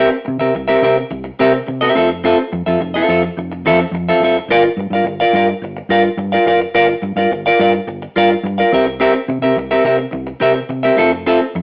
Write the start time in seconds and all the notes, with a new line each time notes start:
Already playing: C4 G4 A#4
0.10 muted clean electric guitar stroke
0.25 C3, muted clean electric guitar stroke
0.39 C3 C4 G4 A#4 E5
0.55 C2, muted clean electric guitar stroke
0.68 C4 G4 A#4 E5
0.82 C3 C4 G4 A#4 E5
0.98 muted clean electric guitar stroke
1.11 C2, muted clean electric guitar stroke
1.24 muted clean electric guitar stroke
1.39 C3 C4 G4 A#4 E5
1.54 muted clean electric guitar stroke
1.67 C3, muted clean electric guitar stroke
1.81 C4 G4 A#4 E5
1.95 F1 C4 F4 A4 E5
2.11 muted clean electric guitar stroke
2.24 C4 F4 A4 E5
2.39 muted clean electric guitar stroke
2.52 F2, muted clean electric guitar stroke
2.66 F2 C4 F4 A4 E5
2.80 F1, muted clean electric guitar stroke
2.94 C4 F4 A4 E5
3.08 F2 C4 F4 A4 E5
3.23 muted clean electric guitar stroke
3.37 F1, muted clean electric guitar stroke
3.52 muted clean electric guitar stroke
3.65 F2 C4 F4 A4 E5
3.81 muted clean electric guitar stroke
3.91 F2, muted clean electric guitar stroke
4.09 C4 F4 A4 E5
4.20 F#1 C4 F4
4.24 A4 E5
4.38 muted clean electric guitar stroke
4.48 G1 F4 A#4 D5 F5
4.64 muted clean electric guitar stroke
4.77 G2, muted clean electric guitar stroke
4.90 G2 D5 F5
4.95 F4 A#4
5.04 G1, muted clean electric guitar stroke
5.20 F4 A#4 D5 F5
5.33 G2 F4 A#4 D5 F5
5.49 muted clean electric guitar stroke
5.62 G1, muted clean electric guitar stroke
5.77 muted clean electric guitar stroke
5.89 G2 F4 A#4 D5 F5
6.04 muted clean electric guitar stroke
6.17 G2, muted clean electric guitar stroke
6.32 F4 A#4 D5 F5
6.46 F#1 F4 A#4 D5 F5
6.61 muted clean electric guitar stroke
6.74 G1 F4 A#4 D5 F5
6.88 muted clean electric guitar stroke
7.02 G2, muted clean electric guitar stroke
7.16 G2 F4 A#4 D5 F5
7.31 G1, muted clean electric guitar stroke
7.46 F4 A#4 D5 F5
7.59 G2 F4 A#4 D5 F5
7.73 muted clean electric guitar stroke
7.87 G1, muted clean electric guitar stroke
8.02 muted clean electric guitar stroke
8.16 G2 F4 A#4 D5 F5
8.31 muted clean electric guitar stroke
8.43 G2, muted clean electric guitar stroke
8.58 F4 A#4 D5 F5
8.72 C2 C4 G4 A#4 E5
8.87 muted clean electric guitar stroke
9.00 C4 G4 A#4 E5
9.14 muted clean electric guitar stroke
9.28 C3, muted clean electric guitar stroke
9.42 C3 C4 G4 A#4 E5
9.56 C2, muted clean electric guitar stroke
9.71 C4 G4 A#4 E5
9.84 C3 C4 G4 A#4 E5
9.98 muted clean electric guitar stroke
10.11 C2, muted clean electric guitar stroke
10.27 muted clean electric guitar stroke
10.40 C3 C4 G4 A#4 E5
10.54 muted clean electric guitar stroke
10.69 C3, muted clean electric guitar stroke
10.83 C4 G4 A#4 E5
10.97 F1 C4 F4 A4 E5
11.12 muted clean electric guitar stroke
11.26 C4 F4 A4 E5
11.41 muted clean electric guitar stroke
11.55 F2, muted clean electric guitar stroke